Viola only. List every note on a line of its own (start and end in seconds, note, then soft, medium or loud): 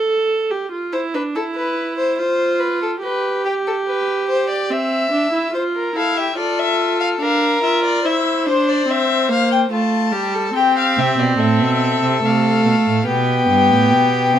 0.00 0.52 A4 medium
0.51 0.71 G4 medium
0.71 0.94 F4 medium
0.92 1.16 E4 medium
1.14 1.37 D4 medium
1.35 2.21 E4 medium
2.19 3.02 F4 medium
3.03 4.72 G4 medium
4.70 5.11 C4 medium
5.12 5.32 D4 medium
5.33 5.53 E4 medium
5.53 5.95 F4 medium
5.96 6.36 E4 medium
6.37 7.19 F4 medium
7.21 7.62 D4 medium
7.63 8.06 F4 medium
8.05 8.47 E4 medium
8.46 8.87 D4 medium
8.88 9.30 C4 medium
9.29 9.70 A#3 medium
9.71 10.13 A3 medium
10.12 10.54 G3 medium
10.54 12.19 C4 medium
12.23 13.06 A3 medium
13.06 14.39 B3 medium